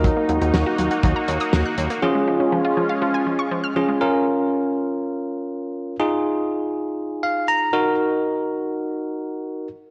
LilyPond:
<<
  \new Staff \with { instrumentName = "Tine electric piano" } { \time 4/4 \key bes \minor \tempo 4 = 121 << { r1 | r1 | r1 | r2 r8 f''8 bes''4 |
r1 | } \\ { <ees' ges' bes'>2.~ <ees' ges' bes'>8 r8 | <des' f' aes'>2.~ <des' f' aes'>8 <des' f' aes'>8 | <des' f' bes'>1 | <ees' f' aes'>2.~ <ees' f' aes'>8 <ees' ges' bes'>8~ |
<ees' ges' bes'>2.~ <ees' ges' bes'>8 r8 | } >> }
  \new Staff \with { instrumentName = "Analog synth pad" } { \time 4/4 \key bes \minor <bes ees' ges'>1 | <aes des' f'>1 | r1 | r1 |
r1 | }
  \new Staff \with { instrumentName = "Synth arpeggio sound" } { \clef bass \time 4/4 \key bes \minor ges16 bes16 ges16 ees'16 ges16 ges'16 ges16 ges''16 ges16 bes''16 ges16 ees'''16 ges16 ges'''16 ges16 bes16 | f16 aes16 f16 des'16 f16 f'16 f16 f''16 f16 aes''16 f16 des'''16 f16 f'''16 f16 aes16 | r1 | r1 |
r1 | }
  \new Staff \with { instrumentName = "Analog synth bass" } { \clef bass \time 4/4 \key bes \minor ees,16 r16 ees,16 ees,16 ees,16 r16 ees,16 r16 ees,16 r16 ees,16 r16 ees,16 r16 ees,16 r16 | r1 | r1 | r1 |
r1 | }
  \new DrumStaff \with { instrumentName = "Drums" } \drummode { \time 4/4 <hh bd>8 hh16 hh16 sn8 hh16 hh16 <hh bd>8 hh16 hh16 sn8 hh16 hh16 | r4 r4 r4 r4 | r4 r4 r4 r4 | r4 r4 r4 r4 |
r4 r4 r4 r4 | }
>>